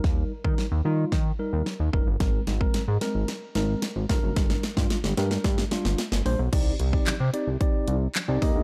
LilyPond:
<<
  \new Staff \with { instrumentName = "Tine electric piano" } { \time 4/4 \key c \minor \tempo 4 = 111 <g ees' bes'>8 r16 <g ees' bes'>8 r16 <g ees' f'>8 r8 <g ees' bes'>8 r8 <g ees' bes'>16 r16 | <aes c' bes'>8 r16 <aes c' bes'>8 r16 <aes c' bes'>8 r8 <aes c' bes'>8 r8 <g d' bes'>8~ | <g d' bes'>8 r16 <g d' f'>8 r16 <g d' bes'>8 r8 <g d' f'>8 r8 <g d' c''>16 r16 | <c' ees' g' d''>8 r16 <c' ees' g' d''>8 r16 <c' ees' g' d''>16 r16 <c' ees' g' d''>8. r8 <c' ees' g' d''>16 <bes ees' g' ees''>8 | }
  \new Staff \with { instrumentName = "Analog synth bass" } { \clef bass \time 4/4 \key c \minor ees,8 r16 ees16 r16 ees,16 ees8 ees8 r16 ees,16 r16 ees,16 fis,,16 g,,16 | aes,,8 aes,,8 aes,16 aes,16 r16 aes,,16 r8 aes,,8 r16 aes,,16 g,,16 fis,,16 | g,,8 r16 g,16 r16 g,,16 g,8 g,8 r16 g,,16 r16 g,,16 bes,,16 b,,16 | c,8 c,8 c16 c16 r16 c,16 r8 c,8 r16 c,16 ees,16 d,16 | }
  \new DrumStaff \with { instrumentName = "Drums" } \drummode { \time 4/4 <bd sn>8. bd16 sn4 <bd sn>4 sn8 bd8 | <hh bd sn>8 <hh sn>16 bd16 <hh sn>8 <hh sn>8 <hh sn>8 <hh sn>8 <hh sn>8 <hho bd sn>8 | <hh bd sn>16 sn16 <hh sn>16 <bd sn>16 <hh sn>16 sn16 <hh sn>16 sn16 <hh bd sn>16 sn16 <hh sn>16 sn16 <hh sn>16 sn16 hho8 | <cymc hh bd>8 hh16 bd16 <hc hh sn>8 hh8 <hh bd>8 hh8 <hc hh sn>8 <hho bd>8 | }
>>